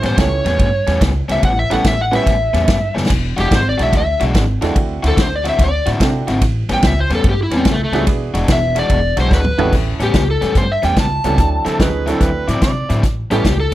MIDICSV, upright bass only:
0, 0, Header, 1, 2, 480
1, 0, Start_track
1, 0, Tempo, 414651
1, 1658, Time_signature, 4, 2, 24, 8
1, 15905, End_track
2, 0, Start_track
2, 0, Title_t, "Upright bass"
2, 0, Program_c, 0, 32
2, 40, Note_on_c, 0, 33, 84
2, 163, Note_off_c, 0, 33, 0
2, 200, Note_on_c, 0, 37, 80
2, 443, Note_off_c, 0, 37, 0
2, 527, Note_on_c, 0, 40, 92
2, 649, Note_off_c, 0, 40, 0
2, 685, Note_on_c, 0, 43, 90
2, 927, Note_off_c, 0, 43, 0
2, 1011, Note_on_c, 0, 40, 92
2, 1132, Note_off_c, 0, 40, 0
2, 1167, Note_on_c, 0, 37, 86
2, 1409, Note_off_c, 0, 37, 0
2, 1489, Note_on_c, 0, 37, 81
2, 1612, Note_off_c, 0, 37, 0
2, 1655, Note_on_c, 0, 33, 98
2, 1895, Note_off_c, 0, 33, 0
2, 1978, Note_on_c, 0, 33, 88
2, 2098, Note_off_c, 0, 33, 0
2, 2135, Note_on_c, 0, 33, 86
2, 2495, Note_off_c, 0, 33, 0
2, 2619, Note_on_c, 0, 33, 86
2, 2859, Note_off_c, 0, 33, 0
2, 2934, Note_on_c, 0, 40, 89
2, 3057, Note_off_c, 0, 40, 0
2, 3103, Note_on_c, 0, 43, 81
2, 3342, Note_off_c, 0, 43, 0
2, 3422, Note_on_c, 0, 30, 86
2, 3543, Note_off_c, 0, 30, 0
2, 3586, Note_on_c, 0, 28, 91
2, 3824, Note_off_c, 0, 28, 0
2, 3919, Note_on_c, 0, 28, 82
2, 4034, Note_off_c, 0, 28, 0
2, 4065, Note_on_c, 0, 32, 90
2, 4304, Note_off_c, 0, 32, 0
2, 4393, Note_on_c, 0, 35, 93
2, 4510, Note_off_c, 0, 35, 0
2, 4541, Note_on_c, 0, 38, 92
2, 4782, Note_off_c, 0, 38, 0
2, 4872, Note_on_c, 0, 35, 95
2, 4990, Note_off_c, 0, 35, 0
2, 5027, Note_on_c, 0, 32, 89
2, 5266, Note_off_c, 0, 32, 0
2, 5353, Note_on_c, 0, 40, 84
2, 5471, Note_off_c, 0, 40, 0
2, 5508, Note_on_c, 0, 38, 89
2, 5746, Note_off_c, 0, 38, 0
2, 5830, Note_on_c, 0, 38, 85
2, 5949, Note_off_c, 0, 38, 0
2, 5989, Note_on_c, 0, 38, 84
2, 6346, Note_off_c, 0, 38, 0
2, 6469, Note_on_c, 0, 38, 86
2, 6707, Note_off_c, 0, 38, 0
2, 6794, Note_on_c, 0, 45, 91
2, 6911, Note_off_c, 0, 45, 0
2, 6944, Note_on_c, 0, 48, 92
2, 7183, Note_off_c, 0, 48, 0
2, 7268, Note_on_c, 0, 32, 89
2, 7388, Note_off_c, 0, 32, 0
2, 7423, Note_on_c, 0, 33, 91
2, 7663, Note_off_c, 0, 33, 0
2, 7743, Note_on_c, 0, 33, 86
2, 7864, Note_off_c, 0, 33, 0
2, 7900, Note_on_c, 0, 37, 87
2, 8140, Note_off_c, 0, 37, 0
2, 8215, Note_on_c, 0, 40, 92
2, 8339, Note_off_c, 0, 40, 0
2, 8381, Note_on_c, 0, 43, 88
2, 8621, Note_off_c, 0, 43, 0
2, 8686, Note_on_c, 0, 40, 93
2, 8812, Note_off_c, 0, 40, 0
2, 8859, Note_on_c, 0, 37, 88
2, 9099, Note_off_c, 0, 37, 0
2, 9161, Note_on_c, 0, 37, 86
2, 9289, Note_off_c, 0, 37, 0
2, 9335, Note_on_c, 0, 28, 91
2, 9576, Note_off_c, 0, 28, 0
2, 9651, Note_on_c, 0, 28, 86
2, 9775, Note_off_c, 0, 28, 0
2, 9820, Note_on_c, 0, 28, 86
2, 10178, Note_off_c, 0, 28, 0
2, 10298, Note_on_c, 0, 28, 96
2, 10537, Note_off_c, 0, 28, 0
2, 10612, Note_on_c, 0, 35, 90
2, 10734, Note_off_c, 0, 35, 0
2, 10776, Note_on_c, 0, 38, 87
2, 11015, Note_off_c, 0, 38, 0
2, 11094, Note_on_c, 0, 32, 92
2, 11215, Note_off_c, 0, 32, 0
2, 11256, Note_on_c, 0, 33, 87
2, 11494, Note_off_c, 0, 33, 0
2, 11571, Note_on_c, 0, 33, 83
2, 11693, Note_off_c, 0, 33, 0
2, 11738, Note_on_c, 0, 37, 85
2, 11975, Note_off_c, 0, 37, 0
2, 12061, Note_on_c, 0, 40, 85
2, 12179, Note_off_c, 0, 40, 0
2, 12214, Note_on_c, 0, 43, 88
2, 12452, Note_off_c, 0, 43, 0
2, 12541, Note_on_c, 0, 40, 87
2, 12658, Note_off_c, 0, 40, 0
2, 12693, Note_on_c, 0, 37, 85
2, 12931, Note_off_c, 0, 37, 0
2, 13015, Note_on_c, 0, 37, 82
2, 13134, Note_off_c, 0, 37, 0
2, 13171, Note_on_c, 0, 38, 86
2, 13409, Note_off_c, 0, 38, 0
2, 13494, Note_on_c, 0, 38, 83
2, 13613, Note_off_c, 0, 38, 0
2, 13655, Note_on_c, 0, 38, 83
2, 14010, Note_off_c, 0, 38, 0
2, 14132, Note_on_c, 0, 38, 93
2, 14368, Note_off_c, 0, 38, 0
2, 14449, Note_on_c, 0, 45, 91
2, 14568, Note_off_c, 0, 45, 0
2, 14606, Note_on_c, 0, 48, 81
2, 14845, Note_off_c, 0, 48, 0
2, 14932, Note_on_c, 0, 45, 84
2, 15050, Note_off_c, 0, 45, 0
2, 15082, Note_on_c, 0, 33, 85
2, 15321, Note_off_c, 0, 33, 0
2, 15400, Note_on_c, 0, 33, 84
2, 15521, Note_off_c, 0, 33, 0
2, 15563, Note_on_c, 0, 37, 85
2, 15801, Note_off_c, 0, 37, 0
2, 15905, End_track
0, 0, End_of_file